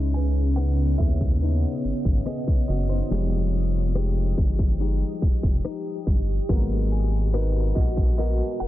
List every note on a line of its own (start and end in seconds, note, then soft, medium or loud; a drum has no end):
0.00 0.96 C#2 loud
0.00 3.11 C#3 medium
0.00 3.08 B3 medium
0.00 0.57 C#4 medium
0.00 0.58 D#4 medium
0.00 0.12 E4 medium
0.00 0.11 C#5 loud
0.00 3.08 C#5 medium
0.00 0.11 C6 medium
0.00 6.45 D#6 medium
0.14 0.55 B4 medium
0.14 0.54 G#5 loud
0.14 closed hi-hat medium
0.56 1.41 B3 medium
0.56 1.42 D#4 medium
0.56 0.97 B4 medium
0.56 1.00 F#5 medium
0.56 cross-stick loud
0.56 closed hi-hat medium
0.98 1.65 D#2 medium
0.98 3.07 B3 medium
0.98 3.07 C#4 medium
0.98 3.07 E4 medium
0.98 2.23 G#4 medium
0.98 2.30 E5 loud
0.98 kick loud
0.98 closed hi-hat medium
1.21 kick medium
1.41 2.25 B3 medium
1.41 3.96 D#4 medium
1.41 closed hi-hat medium
1.84 1.93 G#1 soft
1.84 closed hi-hat medium
2.05 2.22 G#1 medium
2.05 kick medium
2.26 3.19 B3 medium
2.26 2.66 G#4 medium
2.26 2.66 D#5 medium
2.26 cross-stick loud
2.26 closed hi-hat medium
2.48 kick medium
2.68 3.01 F#1 medium
2.68 2.75 F#4 medium
2.68 2.73 D#5 medium
2.68 closed hi-hat medium
2.89 3.10 D#4 medium
2.89 3.70 C5 medium
3.11 4.34 F1 loud
3.11 6.49 F3 medium
3.11 3.67 G3 medium
3.11 3.67 G#3 medium
3.11 3.68 D#4 medium
3.11 3.95 G4 medium
3.11 6.46 G4 medium
3.11 6.46 G5 medium
3.11 closed hi-hat medium
3.53 closed hi-hat medium
3.95 4.79 G#3 medium
3.95 4.80 D#4 medium
3.95 4.80 G4 medium
3.95 cross-stick loud
3.95 closed hi-hat medium
4.37 5.03 G1 medium
4.37 kick loud
4.37 closed hi-hat medium
4.59 kick medium
4.79 6.49 G#3 medium
4.79 5.64 D#4 medium
4.79 6.49 G4 medium
4.79 closed hi-hat medium
5.22 5.31 F1 soft
5.22 kick medium
5.22 closed hi-hat medium
5.43 5.60 F1 loud
5.43 kick medium
5.64 7.34 D#4 medium
5.64 cross-stick loud
5.64 closed hi-hat medium
6.07 6.40 G1 loud
6.07 kick loud
6.07 closed hi-hat medium
6.49 7.72 G#1 loud
6.49 7.05 F#3 medium
6.49 8.68 G#3 medium
6.49 7.06 A#3 medium
6.49 7.06 B3 medium
6.49 8.68 F#4 medium
6.49 7.34 A#4 medium
6.49 8.68 G#5 medium
6.49 8.68 A#5 medium
6.49 kick loud
6.49 closed hi-hat medium
6.91 8.68 G#5 medium
6.91 closed hi-hat medium
7.33 8.17 B3 medium
7.33 7.74 D#4 medium
7.33 8.18 F#4 medium
7.33 8.19 A#4 medium
7.33 7.77 B4 medium
7.33 cross-stick loud
7.33 closed hi-hat medium
7.75 8.41 A#1 medium
7.75 8.16 F#4 medium
7.75 8.15 D#5 loud
7.75 kick loud
7.75 closed hi-hat medium
7.97 kick medium
8.18 8.68 B3 medium
8.18 8.68 F#4 medium
8.18 8.58 F#4 medium
8.18 8.68 A#4 medium
8.18 8.62 D#5 loud
8.18 closed hi-hat medium
8.60 8.68 F1 soft
8.60 8.68 A#4 medium
8.60 8.68 F#5 loud
8.60 closed hi-hat medium